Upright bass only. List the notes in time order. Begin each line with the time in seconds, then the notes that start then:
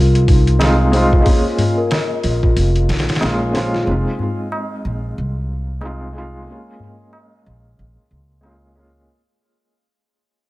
Already playing: C2
2.24 A#1
2.56 F1
2.89 A#1
3.22 A#1
3.87 F1
4.85 A#1
5.18 C2
7.46 A#1
7.79 A#1
8.11 C#2